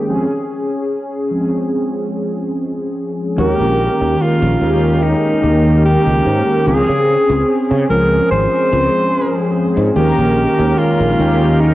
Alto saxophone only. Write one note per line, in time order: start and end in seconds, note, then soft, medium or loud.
3.39 4.23 G4 loud
4.21 5.04 F4 medium
5.03 5.85 D#4 medium
5.85 6.63 G4 loud
6.67 7.60 G#4 loud
7.90 8.28 A#4 loud
8.31 9.50 C5 loud
9.96 10.79 G4 loud
10.78 11.62 F4 medium
11.60 11.74 D#4 medium